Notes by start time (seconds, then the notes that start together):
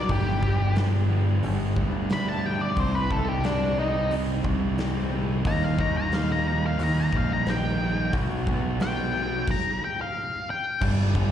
Already playing: D5
0.09 G1 G2 D3 G3 B3 D4 G4, kick, open hi-hat
0.42 G1 G2 D3 G3 B3 D4, kick
0.76 G2 D3 G3 B3 D4, snare, open hi-hat
1.10 G2 D3 G3 B3 D4
1.43 G1 G2 D3 G3 B3 D4, open hi-hat
1.76 D2 G2 D3 G3 B3 D4, kick
2.10 G2 D3 G3 B3 D4 B5, snare, open hi-hat
2.28 A5
2.43 G2 D3 G3 B3 D4 G5
2.61 D5
2.76 C2 C3 G3 C4 D#4 C5, kick, open hi-hat
2.95 B4
3.10 C2 C3 G3 C4 D#4 A4, kick
3.29 G4
3.44 C3 G3 C4 D4 D#4, snare, open hi-hat
3.78 C3 G3 C4 D#4
4.11 C3 G3 C4 D#4, open hi-hat
4.44 C2 C3 G3 C4 D#4, kick
4.78 C3 G3 C4 D#4, snare, open hi-hat
5.12 C3 G3 C4 D#4
5.45 D#2 D#3 G3 A#3 D#4 A#5, kick, open hi-hat
5.64 F5
5.79 D#2 D#3 G3 A#3 D#4 A#5, kick
5.97 A#5
6.12 D#3 G3 A#3 D#4 F5, snare, open hi-hat
6.32 A#5
6.46 D#3 G3 A#3 D#4 A#5
6.66 F5
6.79 D#2 D#3 G3 A#3 D#4, open hi-hat
6.83 A#5
7.00 A#5
7.13 A#1 D#3 G3 A#3 D#4, kick
7.17 F5
7.33 A#5
7.46 D#3 G3 A#3 D#4, snare, open hi-hat
7.50 G5
7.80 D#3 G3 A#3 D#4
8.13 B1 B2 F#3 B3 D#4, kick, open hi-hat
8.47 B1 B2 F#3 B3 D#4, kick
8.80 B2 F#3 B3 D#4 G5, snare, open hi-hat
9.14 B2 F#3 B3 D#4
9.47 A#5, kick, crash
9.84 G5
10.01 F5
10.50 G5
10.81 G1 G2 D3 G3 B3 D4, kick, crash
11.15 G1 G2 D3 G3 B3 D4, kick, crash